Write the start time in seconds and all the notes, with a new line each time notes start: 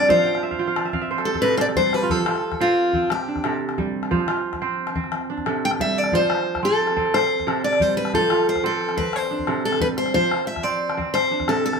Already playing: C3 G3 C4 D4 F4 G4
0.08 F3 C5 E5, calabash thump
0.17 F5
0.25 G5
0.34 F5, calabash click
0.43 E5
0.51 F5, calabash thump, calabash click
0.59 F4 G5
0.67 F5
0.76 D5, calabash click
0.85 E5, calabash click
0.93 C4 F5, calabash thump
1.02 E5
1.11 C5, calabash click
1.18 A4, calabash click
1.25 G4 A4
1.34 A4, calabash thump, calabash click
1.42 C3 B4, calabash click
1.51 A4, calabash click
1.57 G4 C5 D5, calabash click
1.67 A4, calabash click
1.76 G3 B4 C5, calabash thump
1.86 A4
1.93 G4 B4, calabash click
2.03 F4
2.10 F3 A4 C5, calabash thump
2.18 calabash click
2.26 F4, calabash click
2.36 calabash click
2.52 calabash thump, calabash click
2.60 C4 F4 C5
2.93 C4, calabash thump
3.02 calabash click
3.10 G4, calabash click
3.28 D4
3.36 calabash thump, calabash click
3.44 C3 A4, calabash click
3.61 calabash click
3.69 calabash click
3.78 G3, calabash thump
4.03 calabash click
4.11 F3 C5, calabash thump
4.20 calabash click
4.28 F4, calabash click
4.37 calabash click
4.53 calabash thump, calabash click
4.62 C4 C5
4.87 calabash click
4.95 C4, calabash thump
5.04 calabash click
5.12 calabash click
5.30 D4
5.38 calabash thump, calabash click
5.46 C3 A4, calabash click
5.63 G5, calabash click
5.71 calabash click
5.79 G3 E5, calabash thump
5.98 D5
6.04 calabash click
6.12 F3 C5, calabash thump
6.22 calabash click
6.30 calabash click
6.38 calabash click
6.55 calabash thump, calabash click
6.63 C4 A4 C5
6.87 calabash click
6.97 C4, calabash thump
7.05 calabash click
7.14 C5, calabash click
7.40 calabash thump, calabash click
7.47 C3 A4, calabash click
7.64 D5, calabash click
7.73 calabash click
7.80 G3 C5, calabash thump
7.97 B4
8.05 calabash click
8.13 F3 A4 C5, calabash thump, calabash click
8.30 F4, calabash click
8.47 C5, calabash click
8.56 calabash thump, calabash click
8.63 C4 A4 C5
8.72 calabash click
8.81 calabash click
8.89 calabash click
8.97 C4 B4, calabash thump, calabash click
9.13 C5, calabash click
9.31 D4
9.39 calabash thump
9.47 C3 A4, calabash click
9.65 A4
9.72 calabash click
9.80 G3 B4, calabash thump
9.97 C5, calabash click
10.06 calabash click
10.14 F3 C5, calabash thump
10.24 calabash click
10.31 F4, calabash click
10.40 calabash click
10.47 E5
10.56 calabash thump, calabash click
10.63 C4 C5 D5
10.90 calabash click
10.97 C4, calabash thump
11.07 calabash click
11.14 C5, calabash click
11.31 D4
11.40 calabash thump, calabash click
11.48 C3 A4, calabash click
11.65 A4, calabash click
11.73 calabash click